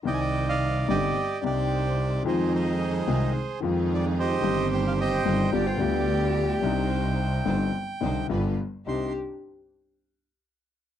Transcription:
<<
  \new Staff \with { instrumentName = "Bandoneon" } { \time 4/4 \key c \minor \tempo 4 = 109 << { g''32 aes''32 g''8 f''8. ees''4 d''4. | c''8 ees''4. r4 d''8 ees''8~ | ees''8 g''16 f''16 g''2.~ | g''2. r4 |
c'''8 r2. r8 | } \\ { <d'' ees''>8. d''8. g'4 g'4. | <ees' aes'>8 <aes' c''>2 r4 <g' c''>8~ | <g' c''>4 <c'' ees''>4 r2 | r1 |
r1 | } >> }
  \new Staff \with { instrumentName = "Flute" } { \time 4/4 \key c \minor r1 | r1 | r2 d''16 c''16 d''4.~ | d''8 r2. r8 |
ees''8 r2. r8 | }
  \new Staff \with { instrumentName = "Cello" } { \time 4/4 \key c \minor r1 | r1 | r2 g'16 f'16 g'4.~ | g'8 r2. r8 |
g'8 r2. r8 | }
  \new Staff \with { instrumentName = "String section" } { \time 4/4 \key c \minor <ees' c''>4. <d' ees' c''>8 r8 <ees' c''>4. | <ees' f' aes'>4. <ees' f' aes'>8 r8 <ees' f' aes'>4. | <c' ees' g'>4. <c' ees' g'>8 <b f' g'>8 <b f' g'>4. | <ees' c''>4. <d' ees' c''>8 r8 <d' ees' c''>8 <f' g' b'>8 r8 |
<d' ees' c''>8 r2. r8 | }
  \new Staff \with { instrumentName = "Grand piano" } { \clef bass \time 4/4 \key c \minor <c, c ees g c' ees'>4. <g,, g, d g c' ees'>8 r8 <c, c g c' d' ees'>4. | <f, ees f aes c' f'>4. <c, c ees aes c' f'>8 r8 <f, ees f aes c' f'>4. | <g,, g, ees g c' g'>4. <g,, g, ees g c' g'>8 <g,, g, d g b f'>8 <d, d g b f'>4. | <c, c g c' d' ees'>4. <g,, g, d g c' ees'>8 r8 <c, c d g c' ees'>8 <g,, g, d g b f'>8 r8 |
<c, c' d' ees'>8 r2. r8 | }
  \new Staff \with { instrumentName = "Double bass" } { \clef bass \time 4/4 \key c \minor c,4. g,,8 r8 c,4. | f,4. c,8 r8 f,4. | g,,4. g,,8 g,,8 d,4. | c,4. g,,8 r8 c,8 g,,8 r8 |
c,8 r2. r8 | }
>>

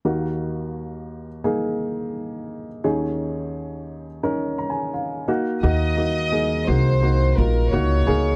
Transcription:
<<
  \new Staff \with { instrumentName = "Violin section" } { \time 4/4 \key ees \dorian \tempo 4 = 86 r1 | r1 | ees''4. c''4 bes'8 des''4 | }
  \new Staff \with { instrumentName = "Upright piano" } { \time 4/4 \key ees \dorian << { r1 | r2 \tuplet 3/2 { r8. bes''16 aes''8 } f''8 ees''8 | r1 | } \\ { <bes ees' ges'>4.~ <bes ees' ges'>16 r16 <bes ees' aes'>4.~ <bes ees' aes'>16 r16 | <des' ees' aes'>4.~ <des' ees' aes'>16 r16 <des' ees' bes'>4. <bes ees' ges'>8 | <bes ees' ges'>8 <bes ees' ges'>8 <bes ees' aes'>8 <bes ees' ges'>8 <bes ees' ges'>8 <bes ees' f'>8 <bes ees' ges'>8 <bes ees' aes'>8 | } >> }
  \new Staff \with { instrumentName = "Upright piano" } { \clef bass \time 4/4 \key ees \dorian <ees, ees>1 | <ees, ees>2.~ <ees, ees>8 r8 | ees4. r2 r8 | }
  \new Staff \with { instrumentName = "Upright bass" } { \clef bass \time 4/4 \key ees \dorian r1 | r1 | ees,4. c,4 bes,,8 des,8 des,8 | }
>>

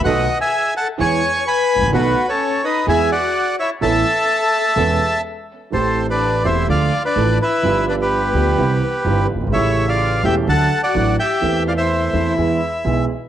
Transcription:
<<
  \new Staff \with { instrumentName = "Bandoneon" } { \time 4/4 \key a \major \tempo 4 = 127 << { fis''8. gis''8. a''8 cis'''4 b''4 | b'8. cis''8. dis''8 gis''8 fis''4 e''8 | a''2. r4 | \key a \minor c''8. d''8. e''8 f''8. d''8. e''8~ |
e''8 d''16 b'2~ b'8. r8 | e''8. f''8. g''8 a''8. fis''8. g''8~ | g''8 f''16 e''2~ e''8. r8 | } \\ { dis''8. e''8. fis''8 gis''4 gis''4 | fis'8. a'8. b'8 e''8 d''4 cis''8 | e''2. r4 | a'8. b'8. c''8 d''8. b'8. b'8~ |
b'8 b'16 g'2~ g'8. r8 | cis''8. d''8. e''8 fis''8. d''8. e''8~ | e''8 d''16 c''4~ c''16 r2 | } >> }
  \new Staff \with { instrumentName = "Violin section" } { \time 4/4 \key a \major fis'8. gis'8. a'8 cis''4 b'4 | b8. cis'8. dis'8 gis'8 fis'4 e'8 | a'2. r4 | \key a \minor c'8. d'8. e'8 f'8. d'8. e'8~ |
e'8 d'16 b2~ b8. r8 | e'8. f'8. g'8 a'8. fis'8. g'8~ | g'8 f'16 e'2~ e'8. r8 | }
  \new Staff \with { instrumentName = "String section" } { \time 4/4 \key a \major <b dis' a'>8 r4. <b e' gis'>8 r4. | <b dis' a'>8 r4. <b e' gis'>8 r4. | <b cis' a'>8 r4. <b cis' a'>8 r4. | \key a \minor r1 |
r1 | r1 | r1 | }
  \new Staff \with { instrumentName = "Grand piano" } { \clef bass \time 4/4 \key a \major <b,, b, dis a b fis'>8 r4. <e, e gis b gis'>8 r4 r32 gis,,32 a,,32 bes,,32 | <b,, b, dis a b fis'>8 r4. <e, e gis b gis'>8 r4. | <a,, a, e b cis' a'>8 r4. <e,, e, e b cis' a'>8 r4. | \key a \minor <a,, a, e a c' g'>4. <e,, e, e a c' g'>8 <d, d f a d' a'>8 r8 <a,, a, f a d' a'>8 r8 |
<g,, g, f b d' g'>4. <d, d f b d' g'>8 <c, c e g c' g'>8 r8 <g,, g, e g c' g'>8 r32 fis,,32 g,,32 gis,,32 | <a,, a, cis a g'>4. <e,, e, e a cis' g'>8 <d, d fis a d' a'>8 r8 <a,, a, fis a d' a'>8 r8 | <e, e a c' a'>4. <e, e a c' a'>8 <e, e gis b gis'>8 r8 <b,, b, e gis b gis'>8 r8 | }
  \new Staff \with { instrumentName = "Upright bass" } { \clef bass \time 4/4 \key a \major b,,16. r4. r32 e,16. r4 r16 gis,,32 a,,32 bes,,32 | b,,16. r4. r32 e,16. r4. r32 | a,,16. r4. r32 e,,16. r4. r32 | \key a \minor a,,4~ a,,16. r32 e,,16. r32 d,16. r8 r32 a,,16. r8 r32 |
g,,4~ g,,16. r32 d,16. r32 c,16. r8 r32 g,,16. r16 fis,,32 g,,32 gis,,32 | a,,4~ a,,16. r32 e,,16. r32 d,16. r8 r32 a,,16. r8 r32 | e,4~ e,16. r32 e,16. r32 e,16. r8 r32 b,,16. r8 r32 | }
>>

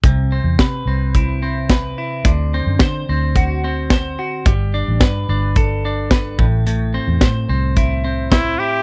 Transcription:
<<
  \new Staff \with { instrumentName = "Trumpet" } { \time 4/4 \key c \major \tempo 4 = 109 r1 | r1 | r1 | r2. e'8 g'8 | }
  \new Staff \with { instrumentName = "Clean electric guitar" } { \time 4/4 \key c \major c8 c'8 b'8 c'8 e'8 c'8 b'8 e'8 | d8 c'8 c''8 c'8 fis'8 c'8 c''8 fis'8 | g8 d'8 b'8 d'8 a'8 d'8 b'8 a,8 | a,8 c'8 c''8 c'8 e'8 c'8 c''8 e'8 | }
  \new Staff \with { instrumentName = "Fingered electric bass" } { \clef bass \time 4/4 \key c \major c,8. e,16 c8 c,2 r8 | d,8. fis,16 d8 d,2 r8 | g,,8. a,,16 g,8 g,,2 a,,8~ | a,,8. e,16 a,8 c,2 r8 | }
  \new DrumStaff \with { instrumentName = "Drums" } \drummode { \time 4/4 <hh bd>4 <hh bd sn>4 <hh bd>4 <hh bd sn>4 | <hh bd>4 <hh bd sn>4 <hh bd>4 <hh bd sn>4 | <hh bd>4 <hh bd sn>4 <hh bd>4 <hh bd sn>8 bd8 | hh4 <hh bd sn>4 <hh bd>4 <hh bd sn>4 | }
>>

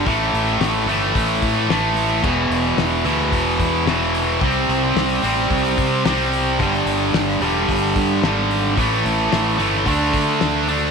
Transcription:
<<
  \new Staff \with { instrumentName = "Distorted electric guitar" } { \clef bass \time 4/4 \key a \mixolydian \tempo 4 = 110 <a, e a>4. <a, e a>4. <a, e a>4 | <e, b, e>4. <e, b, e>4. <e, b, e>4 | <c g c'>4. <c g c'>4. <c g c'>4 | <g, d g>4. <g, d g>4. <g, d g>4 |
<a, e a>4. <a, e a>8 <d a d'>4. <d a d'>8 | }
  \new Staff \with { instrumentName = "Fingered electric bass" } { \clef bass \time 4/4 \key a \mixolydian a,,8 a,,8 a,,8 g,,8 a,,8 a,8 a,,4 | e,,8 e,,8 e,,8 d,8 e,,8 e,8 e,,4 | c,8 c,8 c,8 a,,8 c,8 c8 c,4 | g,,8 g,,8 g,,8 e,,8 g,,8 g,8 gis,,4 |
a,,8 a,,8 a,,8 g,,8 d,8 d8 d,4 | }
  \new DrumStaff \with { instrumentName = "Drums" } \drummode { \time 4/4 <hho bd>8 hho8 <hho sn>8 hho8 <hho bd>8 <hho bd>8 <hho sn>8 hho8 | <cymc bd>8 hho8 <hho sn>8 hho8 <hho bd>8 <hho bd>8 <hho sn>8 hho8 | <hho bd>8 hho8 <hho sn>8 hho8 <hho bd>8 <hho bd>8 <hho sn>8 hho8 | <hho bd>8 hho8 <hho sn>8 hho8 <hho bd>8 <hho bd>8 <hho sn>8 hho8 |
<hho bd>8 hho8 <hho sn>8 hho8 <hho bd>8 <hho bd>8 <hho sn>8 hho8 | }
>>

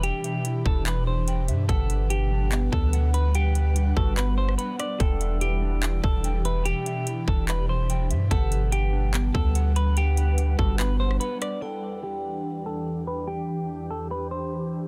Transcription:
<<
  \new Staff \with { instrumentName = "Vibraphone" } { \time 4/4 \key e \minor \tempo 4 = 145 << { <d'' e'''>1 | <b' fis''>1~ | <b' fis''>1 | <d'' e'''>1~ |
<d'' e'''>1 | <b' fis''>1~ | <b' fis''>1 | <e' g''>1~ |
<e' g''>1 | } \\ { g'1~ | g'1~ | g'1~ | g'1~ |
g'1 | g'1~ | g'1 | d''1~ |
d''1 | } >> }
  \new Staff \with { instrumentName = "Clean electric guitar" } { \time 4/4 \key e \minor g'4. a'8 b'8 c''4. | a'4 g'4. a'4 b'8 | g'4. a'8 b'8 c''8 b'8 d''8 | a'4 g'4. a'4 b'8 |
g'4. a'8 b'8 c''4. | a'4 g'4. a'4 b'8 | g'4. a'8 b'8 c''8 b'8 d''8 | a'4 g'4. a'4 b'8 |
g'4. a'8 b'8 c''4. | }
  \new Staff \with { instrumentName = "Clean electric guitar" } { \time 4/4 \key e \minor <e g d' e'' g''>8 e''8 e'8 d'8 g8 e8 g''8 e''8 | fis''8 b'8 g'8 d'8 b8 g8 fis''8 b'8 | fis''8 b'8 g'8 fis'8 b8 g8 fis''8 b'8 | g''8 e''8 e'8 d'8 g8 e8 g''8 e''8 |
g''8 e''8 e'8 d'8 g8 e8 g''8 e''8 | fis''8 b'8 g'8 d'8 b8 g8 fis''8 b'8 | fis''8 b'8 g'8 fis'8 b8 g8 fis''8 b'8 | r1 |
r1 | }
  \new Staff \with { instrumentName = "Ambient pad" } { \time 4/4 \key e \minor <b, e d' g'>1 | <g b' fis''>1~ | <g b' fis''>1 | <b, e g'>1~ |
<b, e g'>1 | <g d' b' fis''>1~ | <g d' b' fis''>1 | <e, e d' g'>1~ |
<e, e d' g'>1 | }
  \new Staff \with { instrumentName = "808-style bass" } { \clef bass \time 4/4 \key e \minor e,,16 r4 r16 e,,2 g,8 | g,,2~ g,,8 d,4.~ | d,4. g,,4. r4 | e,,2~ e,,8 e,,4.~ |
e,,16 r4 r16 e,,2 g,8 | g,,2~ g,,8 d,4.~ | d,4. g,,4. r4 | r1 |
r1 | }
  \new DrumStaff \with { instrumentName = "Drums" } \drummode { \time 4/4 hh8 hh8 hh8 bd8 <hc hh>4 hh8 hh8 | <hh bd>8 hh8 hh4 <hc hh>8 bd8 hh8 hh8 | hh8 hh8 hh8 bd8 <hc hh>8. ss16 hh8 <hh ss>8 | <hh bd>8 hh8 hh4 <hc hh>8 bd8 hh8 hh8 |
hh8 hh8 hh8 bd8 <hc hh>4 hh8 hh8 | <hh bd>8 hh8 hh4 <hc hh>8 bd8 hh8 hh8 | hh8 hh8 hh8 bd8 <hc hh>8. ss16 hh8 <hh ss>8 | r4 r4 r4 r4 |
r4 r4 r4 r4 | }
>>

